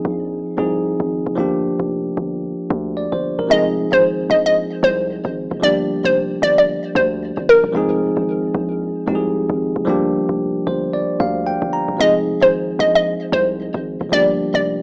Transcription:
0.00 0.54 F3 medium
0.00 0.55 C4 medium
0.00 0.56 D#4 medium
0.00 0.57 G#4 medium
0.05 0.42 A#1 medium
0.57 0.95 C2 medium
0.57 1.34 F3 medium
0.57 1.37 C4 medium
0.57 1.38 D#4 medium
0.57 1.38 G#4 medium
1.00 1.23 G#1 medium
1.26 1.36 F1 medium
1.35 1.74 G1 loud
1.35 3.45 F3 medium
1.35 3.46 A#3 medium
1.35 3.46 D4 medium
1.40 3.47 G4 medium
1.80 2.13 F1 loud
2.17 2.54 G1 loud
2.70 3.07 D2 loud
2.97 3.12 D5 medium
3.12 3.36 G1 loud
3.12 3.38 C5 medium
3.39 3.49 D#1 medium
3.39 3.64 A#4 medium
3.48 3.87 F1 loud
3.48 5.57 F3 medium
3.48 5.58 G#3 medium
3.48 5.58 C4 medium
3.48 5.59 D#4 medium
3.48 3.64 D#5 loud
3.53 5.60 G#4 medium
3.92 4.25 G#1 medium
3.92 4.02 C5 medium
4.30 4.67 A#1 medium
4.30 4.43 D#5 medium
4.46 4.55 D#5 medium
4.83 5.20 C2 medium
4.83 4.96 C5 medium
5.25 5.48 G#1 medium
5.51 5.61 F1 medium
5.60 5.99 G1 loud
5.60 7.70 F3 medium
5.60 7.70 G3 medium
5.60 7.71 A#3 medium
5.60 7.71 D4 medium
5.60 5.76 D5 loud
5.65 7.72 G4 medium
6.04 6.38 F1 medium
6.04 6.14 C5 medium
6.42 6.79 G1 loud
6.42 6.56 D5 loud
6.58 6.67 D5 medium
6.95 7.32 D2 loud
6.95 7.09 C5 medium
7.37 7.60 G1 medium
7.49 7.62 A#4 medium
7.64 7.73 D#1 medium
7.72 8.12 F1 loud
7.72 9.04 F3 medium
7.72 9.04 G#3 medium
7.72 9.05 C4 medium
7.72 9.06 D#4 medium
7.77 9.06 G#4 loud
8.17 8.50 G#1 medium
8.54 8.91 A#1 medium
9.06 9.44 C2 medium
9.06 9.83 F3 medium
9.06 9.87 G#3 medium
9.06 9.87 C4 medium
9.06 9.88 D#4 medium
9.06 9.16 G4 medium
9.15 9.91 G#4 medium
9.50 9.73 G#1 medium
9.76 9.86 F1 medium
9.85 10.24 G1 loud
9.85 11.94 F3 medium
9.85 11.95 G3 medium
9.85 11.96 A#3 medium
9.85 11.96 D4 medium
9.90 11.97 G4 loud
10.29 10.62 F1 medium
10.67 11.04 G1 loud
10.67 10.92 C5 medium
10.93 11.18 D5 medium
11.20 11.57 D2 loud
11.20 11.45 F5 medium
11.47 11.71 G5 medium
11.62 11.85 G1 medium
11.73 11.98 A#5 medium
11.88 11.98 D#1 medium
11.97 12.36 F1 loud
11.97 14.07 F3 medium
11.97 14.07 G#3 medium
11.97 14.08 C4 medium
11.97 14.09 D#4 medium
11.97 12.13 D#5 loud
12.02 14.09 G#4 medium
12.41 12.75 G#1 medium
12.41 12.52 C5 medium
12.79 13.16 A#1 medium
12.79 12.93 D#5 medium
12.95 13.05 D#5 medium
13.32 13.69 C2 loud
13.32 13.46 C5 medium
13.74 13.98 G#1 medium
14.01 14.11 F1 medium
14.09 14.49 G1 loud
14.09 14.82 F3 medium
14.09 14.82 G3 medium
14.09 14.82 A#3 medium
14.09 14.82 D4 medium
14.09 14.26 D5 loud
14.14 14.82 G4 medium
14.54 14.82 F1 loud
14.54 14.64 D5 medium

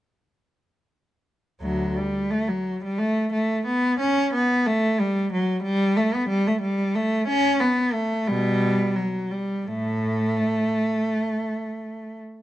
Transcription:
1.61 1.94 D2 medium
1.61 1.94 F#3 medium
1.96 2.31 G3 medium
2.31 2.48 A3 medium
2.48 2.82 F#3 medium
2.84 3.00 G3 medium
2.98 3.31 A3 medium
3.32 3.65 A3 medium
3.66 3.99 B3 medium
4.00 4.33 C#4 medium
4.34 4.66 B3 medium
4.66 4.99 A3 medium
5.00 5.32 G3 medium
5.33 5.64 F#3 medium
5.63 5.96 G3 medium
5.96 6.14 A3 medium
6.13 6.30 B3 medium
6.29 6.46 G3 medium
6.47 6.64 A3 medium
6.61 6.95 G3 medium
6.95 7.29 A3 medium
7.28 7.61 C#4 medium
7.60 7.95 B3 medium
7.93 8.28 A3 medium
8.27 8.93 B2 medium
8.27 8.96 G3 medium
8.96 9.32 F#3 medium
9.31 9.68 G3 medium
9.66 10.72 A2 medium
9.66 12.19 A3 medium

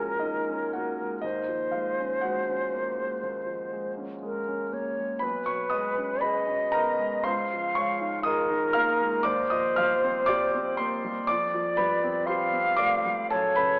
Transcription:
0.00 1.25 A#2 soft
0.00 1.26 F3 soft
0.00 0.22 G#3 soft
0.00 0.75 A#3 soft
0.00 0.49 C#4 soft
0.00 1.26 F4 medium
0.00 0.75 F#4 medium
0.00 0.21 G#4 medium
0.00 1.23 A#4 medium
0.00 1.26 F5 medium
0.00 0.73 F#5 medium
0.00 0.24 G#5 medium
0.19 0.63 G#3 soft
0.19 0.69 D#4 medium
0.19 0.71 D#5 medium
0.49 0.89 C#4 soft
0.73 1.14 A#3 soft
0.73 1.20 F#4 medium
0.73 1.23 F#5 medium
1.00 1.24 G#3 soft
1.22 3.19 D#2 medium
1.22 1.70 D#4 soft
1.22 3.93 C5 medium
1.22 1.73 D#5 medium
1.48 1.89 F3 soft
1.71 2.14 G#3 soft
1.71 2.20 F4 soft
1.71 2.23 F5 medium
1.99 2.39 C#4 soft
2.21 2.63 G#3 soft
2.21 4.70 F#4 medium
2.21 4.73 F#5 medium
2.48 2.88 C#4 soft
2.74 3.13 A#3 soft
2.97 3.38 G#3 soft
3.23 5.20 D#2 medium
3.46 3.88 F3 soft
3.72 4.13 G#3 soft
3.98 4.39 C#4 soft
4.23 4.63 G#3 medium
4.23 4.75 A#4 medium
4.48 4.89 C#4 medium
4.72 5.13 A#3 medium
4.72 5.25 C#5 medium
4.99 5.24 G#3 soft
5.19 7.20 B1 medium
5.19 5.46 B4 medium
5.19 6.24 B4 medium
5.19 5.47 B5 medium
5.46 5.88 F#3 soft
5.46 5.71 C#5 medium
5.46 5.72 C#6 medium
5.70 6.13 G#3 medium
5.70 6.19 D#5 medium
5.70 6.22 D#6 medium
5.98 6.39 C#4 medium
6.21 6.64 G#4 medium
6.21 6.70 B4 medium
6.21 7.26 D#5 medium
6.21 6.73 B5 medium
6.47 6.89 C#4 soft
6.72 7.15 B3 medium
6.72 7.21 A#4 medium
6.72 7.24 A#5 loud
6.99 7.25 G#3 medium
7.24 9.23 C#2 medium
7.24 7.72 C5 medium
7.24 8.24 F5 medium
7.24 7.74 C6 loud
7.52 7.91 F3 medium
7.75 8.16 G#3 medium
7.75 8.22 C#5 medium
7.75 8.25 C#6 loud
8.01 8.41 D#4 medium
8.23 8.66 G#4 medium
8.23 9.27 A#4 medium
8.23 8.72 D#5 medium
8.23 8.75 D#6 loud
8.50 8.91 D#4 medium
8.73 9.16 A#3 medium
8.73 9.22 F5 medium
8.73 9.25 F6 loud
9.01 9.26 G#3 medium
9.23 11.24 D#2 medium
9.23 11.02 C5 medium
9.23 9.49 D5 medium
9.23 9.50 D6 loud
9.50 9.93 F3 medium
9.50 9.75 D#5 medium
9.50 9.76 D#6 medium
9.76 10.19 G3 medium
9.76 10.25 F5 medium
9.76 10.28 F6 loud
10.04 10.44 C4 medium
10.26 10.69 G4 medium
10.26 10.75 D5 medium
10.26 10.78 D6 loud
10.54 10.94 C4 medium
10.77 11.19 A#3 medium
10.77 11.25 C5 medium
10.77 11.28 C6 loud
11.04 11.29 G3 medium
11.27 13.27 F2 medium
11.27 12.28 D5 medium
11.27 11.74 D5 medium
11.27 11.77 D6 loud
11.54 11.93 F3 medium
11.77 12.18 G3 medium
11.77 12.25 B4 medium
11.77 12.28 B5 loud
12.04 12.44 C4 medium
12.26 12.70 G4 medium
12.26 12.76 C5 medium
12.26 13.30 F5 loud
12.26 12.79 C6 medium
12.53 12.95 C4 medium
12.77 13.20 A3 medium
12.77 13.27 D5 medium
12.77 13.30 D6 loud
13.06 13.31 G3 medium
13.30 13.79 F#2 medium
13.30 13.55 A4 medium
13.30 13.79 C#5 loud
13.30 13.57 A5 loud
13.56 13.79 C#3 medium
13.56 13.79 B4 medium
13.56 13.79 B5 loud

